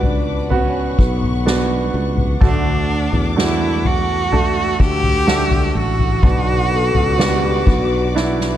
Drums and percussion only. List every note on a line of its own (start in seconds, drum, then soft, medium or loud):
0.03 floor tom medium
0.51 floor tom medium
0.99 kick medium
1.22 floor tom medium
1.47 snare loud
2.17 floor tom medium
2.41 kick loud
2.41 floor tom loud
3.13 floor tom medium
3.38 snare loud
3.85 floor tom medium
4.32 floor tom medium
4.80 kick medium
5.03 floor tom medium
5.28 snare loud
5.51 floor tom medium
5.99 floor tom medium
6.23 kick loud
6.23 floor tom loud
6.95 floor tom medium
7.20 snare loud
7.67 kick medium
7.67 floor tom medium
8.16 snare medium
8.40 snare medium